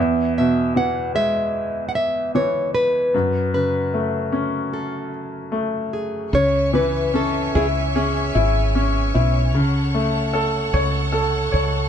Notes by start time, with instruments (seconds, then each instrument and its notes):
Already playing: grand piano E2, nylon-string guitar E5
0.38 grand piano B2, nylon-string guitar E5
0.76 grand piano E3, nylon-string guitar F#5
1.15 grand piano G#3, nylon-string guitar E5
1.89 nylon-string guitar F#5
1.95 nylon-string guitar E5
2.35 grand piano E3, nylon-string guitar C#5
2.75 nylon-string guitar B4
3.14 grand piano F#2
3.54 grand piano C#3, nylon-string guitar B4
3.94 grand piano A3
4.32 grand piano C#4
4.73 nylon-string guitar A4
5.52 grand piano A3
5.93 nylon-string guitar G#4
6.32 fretless electric bass C#2, grand piano C#3, string section C#5 E5 G#5 C#6, nylon-string guitar C#5
6.73 grand piano E3, nylon-string guitar B4
7.14 grand piano C#4, nylon-string guitar A4
7.55 fretless electric bass C#2, grand piano E4, nylon-string guitar G#4
7.96 grand piano C#4, nylon-string guitar G#4
8.35 fretless electric bass G#1, grand piano E4
8.75 grand piano C#4
9.14 fretless electric bass B1, grand piano E4
9.54 fretless electric bass C#2, grand piano C#3, string section A4 F#5
9.95 grand piano A3
10.33 grand piano A4
10.73 fretless electric bass C#2, grand piano C#5
11.12 grand piano A4
11.52 fretless electric bass C#2, grand piano C#5